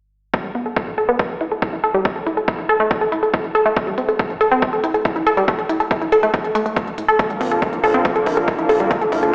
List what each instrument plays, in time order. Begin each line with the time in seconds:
0.34 synth pluck A3, kick, closed hi-hat
0.44 synth pluck G3, closed hi-hat
0.55 synth pluck B3, closed hi-hat
0.66 synth pluck A4, closed hi-hat
0.76 synth pluck A3, kick, closed hi-hat
0.87 synth pluck A2, closed hi-hat
0.98 synth pluck A4, closed hi-hat
1.09 synth pluck B3, closed hi-hat
1.19 synth pluck A3, kick, closed hi-hat
1.30 synth pluck A4, closed hi-hat
1.41 synth pluck E4, closed hi-hat
1.51 synth pluck A4, closed hi-hat
1.62 synth pluck E4, kick, closed hi-hat
1.73 synth pluck E4, closed hi-hat
1.84 synth pluck A4, closed hi-hat
1.94 synth pluck G3, closed hi-hat
2.05 synth pluck A3, kick, closed hi-hat
2.16 synth pluck A4, closed hi-hat
2.26 synth pluck E4, closed hi-hat
2.37 synth pluck A4, closed hi-hat
2.48 synth pluck E4, kick, closed hi-hat
2.59 synth pluck E4, closed hi-hat
2.69 synth pluck A4, closed hi-hat
2.80 synth pluck A3, closed hi-hat
2.91 synth pluck A2, kick, closed hi-hat
3.01 synth pluck A4, closed hi-hat
3.12 synth pluck E4, closed hi-hat
3.23 synth pluck A4, closed hi-hat
3.34 synth pluck E4, kick, closed hi-hat
3.44 closed hi-hat
3.55 synth pluck A4, closed hi-hat
3.66 synth pluck A3, closed hi-hat
3.76 synth pluck A3, kick, closed hi-hat
3.87 synth pluck G3, closed hi-hat
3.98 synth pluck C4, closed hi-hat
4.09 synth pluck A4, closed hi-hat
4.19 synth pluck A3, kick, closed hi-hat
4.30 synth pluck A2, closed hi-hat
4.41 synth pluck A4, closed hi-hat
4.51 synth pluck C4, closed hi-hat
4.62 synth pluck A3, kick, closed hi-hat
4.73 synth pluck A4, closed hi-hat
4.84 synth pluck E4, closed hi-hat
4.94 synth pluck A4, closed hi-hat
5.05 synth pluck E4, kick, closed hi-hat
5.16 synth pluck E4, closed hi-hat
5.27 synth pluck A4, closed hi-hat
5.37 synth pluck G3, closed hi-hat
5.48 synth pluck A3, kick, closed hi-hat
5.59 synth pluck A4, closed hi-hat
5.69 synth pluck E4, closed hi-hat
5.80 synth pluck A4, closed hi-hat
5.91 synth pluck E4, kick, closed hi-hat
6.02 synth pluck E4, closed hi-hat
6.12 synth pluck A4, closed hi-hat
6.23 synth pluck A3, closed hi-hat
6.34 synth pluck A2, kick, closed hi-hat
6.44 synth pluck A4, closed hi-hat
6.55 synth pluck A3, closed hi-hat
6.66 synth pluck A3, closed hi-hat
6.76 synth pluck A3, kick, closed hi-hat
6.87 closed hi-hat
6.98 synth pluck A2, closed hi-hat
7.08 synth pluck A4, closed hi-hat
7.19 analog synth pad D3 F3 A#3, synth pluck A3, kick, closed hi-hat
7.30 synth pluck G3, closed hi-hat
7.41 analog synth bass A#1, synth pluck C4, open hi-hat
7.51 synth pluck A4, closed hi-hat
7.62 synth pluck A3, kick, closed hi-hat
7.73 synth pluck A2, closed hi-hat
7.84 analog synth bass A#1, synth pluck A4, open hi-hat
7.94 synth pluck C4, closed hi-hat
8.05 synth pluck A3, kick, closed hi-hat
8.16 synth pluck A4, closed hi-hat
8.26 analog synth bass A#1, synth pluck E4, open hi-hat
8.37 analog synth bass A#1, synth pluck A4
8.48 synth pluck E4, kick, closed hi-hat
8.59 synth pluck E4, closed hi-hat
8.69 analog synth bass A#1, synth pluck A4, open hi-hat
8.80 synth pluck G3, closed hi-hat
8.91 synth pluck A3, kick, closed hi-hat
9.01 synth pluck A4, closed hi-hat
9.12 analog synth bass A#1, synth pluck E4, open hi-hat
9.23 synth pluck A4, closed hi-hat